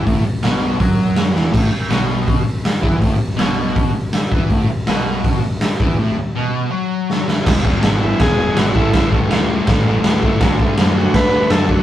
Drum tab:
CC |--------|x-------|--------|--------|
HH |o-o-o-o-|o-o-o-o-|o-o-o-o-|o-o-o-o-|
SD |--o---oo|--o---o-|--o---o-|--o---o-|
BD |o---o---|o---o--o|o---o--o|o---o--o|

CC |--------|x-x-x-x-|x-x-x-x-|x-x-x-x-|
HH |--------|--------|--------|--------|
SD |------oo|o-o-o-o-|o-o-o-o-|o-o-o-o-|
BD |--------|oo--o--o|oo--o--o|oo--o--o|